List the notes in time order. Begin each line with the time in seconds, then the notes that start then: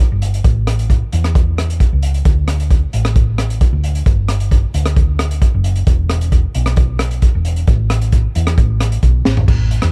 0.12 G1
0.22 closed hi-hat
0.34 closed hi-hat
0.44 A1, kick, closed hi-hat
0.67 cross-stick, closed hi-hat
0.79 closed hi-hat
0.90 kick, closed hi-hat
1.12 E2, closed hi-hat
1.24 cross-stick, closed hi-hat
1.35 kick, closed hi-hat
1.58 cross-stick, closed hi-hat
1.70 closed hi-hat
1.80 kick, closed hi-hat
1.93 C#2
2.03 closed hi-hat
2.14 closed hi-hat
2.25 D2, kick, closed hi-hat
2.48 cross-stick, closed hi-hat
2.60 closed hi-hat
2.70 kick, closed hi-hat
2.93 A1, closed hi-hat
3.05 cross-stick, closed hi-hat
3.16 kick, closed hi-hat
3.38 cross-stick, closed hi-hat
3.50 closed hi-hat
3.61 kick, closed hi-hat
3.73 D2
3.84 closed hi-hat
3.95 closed hi-hat
4.06 G1, kick, closed hi-hat
4.28 cross-stick, closed hi-hat
4.40 closed hi-hat
4.51 kick, closed hi-hat
4.74 D2, closed hi-hat
4.86 cross-stick, closed hi-hat
4.96 kick, closed hi-hat
5.19 cross-stick, closed hi-hat
5.31 closed hi-hat
5.42 kick, closed hi-hat
5.54 F#1
5.64 closed hi-hat
5.76 closed hi-hat
5.87 E1, kick, closed hi-hat
6.10 cross-stick, closed hi-hat
6.21 closed hi-hat
6.32 kick, closed hi-hat
6.55 B1, closed hi-hat
6.66 cross-stick, closed hi-hat
6.76 kick, closed hi-hat
6.99 cross-stick, closed hi-hat
7.11 closed hi-hat
7.22 kick, closed hi-hat
7.35 E1
7.45 closed hi-hat
7.56 closed hi-hat
7.67 A1, kick, closed hi-hat
7.90 cross-stick, closed hi-hat
8.02 closed hi-hat
8.12 kick, closed hi-hat
8.35 E2, closed hi-hat
8.47 cross-stick, closed hi-hat
8.58 A1, kick, closed hi-hat
8.80 cross-stick, closed hi-hat
8.92 closed hi-hat
9.03 B1, kick, closed hi-hat
9.25 A1, snare
9.37 floor tom
9.48 A1, kick, crash
9.71 closed hi-hat
9.82 E2, cross-stick, closed hi-hat